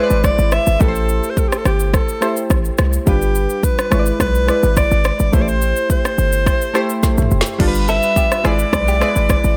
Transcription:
Already playing: synth keys G#3 E4 B4 C5 D5, alto saxophone B4
0.03 synth keys D5
0.10 808-style bass G#1, shaker
0.24 alto saxophone D5, kick, cross-stick, shaker
0.38 808-style bass G#1, shaker
0.52 alto saxophone E5, cross-stick, shaker
0.67 808-style bass G#1, shaker
0.79 808-style bass A1, synth keys A3 E4 G4 B4, alto saxophone A4, kick, shaker
0.88 synth keys C5
0.95 shaker
1.09 shaker
1.24 shaker
1.30 alto saxophone C5
1.37 alto saxophone A4, kick, shaker
1.48 alto saxophone G4
1.52 cross-stick, shaker
1.58 alto saxophone A4
1.65 808-style bass G1, alto saxophone G4, cross-stick, shaker
1.80 shaker
1.94 alto saxophone A4, kick, cross-stick, shaker
2.09 shaker
2.21 synth keys A3 E4 G4 C5, cross-stick, shaker
2.37 shaker
2.50 808-style bass A1, kick, cross-stick, shaker
2.65 shaker
2.78 808-style bass C2, cross-stick, shaker
2.93 shaker
3.06 808-style bass G1, synth keys G3 D4 F4 B4, alto saxophone G4, kick, shaker
3.22 shaker
3.35 shaker
3.50 shaker
3.63 alto saxophone B4, kick, shaker
3.79 cross-stick, shaker
3.90 808-style bass G#1, synth keys G#3 E4 B4 C#5, cross-stick, shaker
3.99 synth keys D5
4.06 shaker
4.20 808-style bass B1, alto saxophone B4, kick, cross-stick, shaker
4.35 shaker
4.47 synth keys G#3 E4 B4 D5, cross-stick, shaker
4.63 808-style bass G#1, shaker
4.77 alto saxophone D5, kick, cross-stick, shaker
4.91 808-style bass G#1, shaker
5.05 cross-stick, shaker
5.19 808-style bass G#1, shaker
5.32 808-style bass A1, synth keys A3 E4 G4 B4, alto saxophone C5, kick, shaker
5.41 synth keys C5, alto saxophone D5
5.48 alto saxophone C5, shaker
5.62 shaker
5.76 shaker
5.90 alto saxophone C5, kick, shaker
6.05 cross-stick, shaker
6.18 808-style bass G1, shaker
6.33 shaker
6.46 kick, cross-stick, shaker
6.62 shaker
6.74 synth keys A3 E4 G4 C5, cross-stick, shaker
6.90 shaker
7.03 kick, snare, shaker
7.18 808-style bass A1, shaker
7.22 mid tom
7.31 808-style bass F1, shaker
7.41 snare
7.46 shaker
7.59 808-style bass G1, synth keys G3 D4 F4 A4, kick, crash
7.68 synth keys B4
7.75 shaker
7.88 clean electric guitar C4 A4, alto saxophone E5, shaker
8.03 clean electric guitar D4 B4, shaker
8.16 clean electric guitar B3 G4, kick, shaker
8.32 cross-stick, shaker
8.44 808-style bass G#1, synth keys G#3 E4 B4 D5, clean electric guitar B3 G#4, alto saxophone D5, cross-stick, shaker
8.59 shaker
8.73 808-style bass B1, kick, cross-stick, shaker
8.88 clean electric guitar B3 G4, shaker
9.00 synth keys G#3 E4 B4 D5, clean electric guitar B3 G#4, cross-stick, shaker
9.16 808-style bass G#1, shaker
9.29 kick, cross-stick, shaker
9.44 808-style bass G#1, shaker

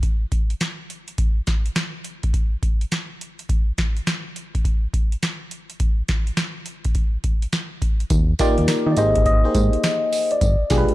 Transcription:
0.03 kick, closed hi-hat
0.32 kick, closed hi-hat
0.50 closed hi-hat
0.61 snare, closed hi-hat
0.90 closed hi-hat
1.08 closed hi-hat
1.18 kick, closed hi-hat
1.47 kick, snare, closed hi-hat
1.66 closed hi-hat
1.76 snare, closed hi-hat
2.04 closed hi-hat
2.23 kick, closed hi-hat
2.34 kick, closed hi-hat
2.63 kick, closed hi-hat
2.81 closed hi-hat
2.92 snare, closed hi-hat
3.21 closed hi-hat
3.39 closed hi-hat
3.49 kick, closed hi-hat
3.78 kick, snare, closed hi-hat
3.97 closed hi-hat
4.07 snare, closed hi-hat
4.36 closed hi-hat
4.55 kick, closed hi-hat
4.65 kick, closed hi-hat
4.94 kick, closed hi-hat
5.12 closed hi-hat
5.23 snare, closed hi-hat
5.51 closed hi-hat
5.70 closed hi-hat
5.80 kick, closed hi-hat
6.08 kick, snare, closed hi-hat
6.27 closed hi-hat
6.37 snare, closed hi-hat
6.66 closed hi-hat
6.85 kick, closed hi-hat
6.95 kick, closed hi-hat
7.24 kick, closed hi-hat
7.42 closed hi-hat
7.53 snare, closed hi-hat
7.82 kick, closed hi-hat
8.00 closed hi-hat
8.10 fm bass D#2, kick, closed hi-hat, tambourine
8.39 fm electric piano A#3 D#4 F4 G4 D5, kick, snare, closed hi-hat, tambourine
8.58 fm bass D#2, closed hi-hat
8.68 fm bass D#3, tine electric piano A#4, snare, closed hi-hat, tambourine
8.87 fm bass D#3
8.92 tine electric piano D5
8.97 fm bass G#1, fm electric piano A#3 D#4 G4 G#4 C5, tine electric piano D#5, closed hi-hat, tambourine
9.15 kick, closed hi-hat
9.26 tine electric piano D#5, kick, closed hi-hat
9.44 fm electric piano A#3 D#4 G4 G#4 C5
9.55 fm bass G#2, kick, closed hi-hat, tambourine
9.73 closed hi-hat
9.84 snare, closed hi-hat, tambourine
10.13 open hi-hat, tambourine
10.31 tine electric piano D5, closed hi-hat
10.41 fm bass G1, kick, closed hi-hat, tambourine
10.70 fm bass B1, fm electric piano G#3 D4 F4 G4 G#4, kick, snare, closed hi-hat, tambourine
10.78 fm electric piano B4
10.89 closed hi-hat

